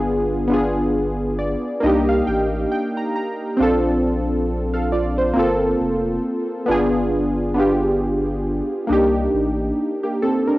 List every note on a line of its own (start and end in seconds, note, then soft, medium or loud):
0.00 1.55 G1 medium
0.00 0.37 B3 medium
0.00 0.35 D4 medium
0.00 0.36 F4 medium
0.00 0.37 G#4 loud
0.48 1.71 B3 medium
0.48 1.72 D4 medium
0.48 1.73 F4 medium
0.53 1.74 G#4 medium
1.39 1.80 D5 medium
1.80 2.22 C2 loud
1.80 3.24 A#3 medium
1.80 3.25 D4 medium
1.80 3.26 D#4 medium
1.80 2.07 D#5 medium
1.86 3.27 G4 medium
2.09 2.26 F5 medium
2.27 2.66 A1 medium
2.27 2.68 G5 medium
2.72 2.95 G5 medium
2.97 3.14 A#5 medium
3.16 3.56 A#5 medium
3.57 5.32 A#1 loud
3.57 3.90 C4 medium
3.57 3.91 D4 medium
3.57 3.92 F4 medium
3.62 3.93 A4 medium
4.74 4.91 A4 soft
4.74 4.91 F5 medium
4.92 5.16 F4 medium
4.92 5.16 D5 medium
5.18 5.59 C5 medium
5.34 5.75 G1 medium
5.34 6.43 A#3 medium
5.34 6.44 C4 medium
5.34 6.45 F4 medium
5.39 6.46 A4 medium
5.80 6.19 F1 medium
6.66 8.61 G1 medium
6.66 7.40 B3 medium
6.66 7.41 D4 medium
6.66 7.42 F4 medium
6.71 7.43 G#4 loud
7.54 8.77 B3 medium
7.54 8.78 D4 medium
7.54 8.79 F4 medium
7.60 8.80 G4 medium
8.87 9.27 C2 loud
8.87 9.76 A#3 medium
8.87 9.77 D4 medium
8.87 9.78 D#4 medium
8.92 9.79 G4 medium
9.34 9.72 A1 medium
10.03 10.21 A#3 medium
10.03 10.20 G4 medium
10.22 10.46 C4 medium
10.22 10.46 A4 medium
10.48 10.59 D4 soft
10.48 10.59 A#4 medium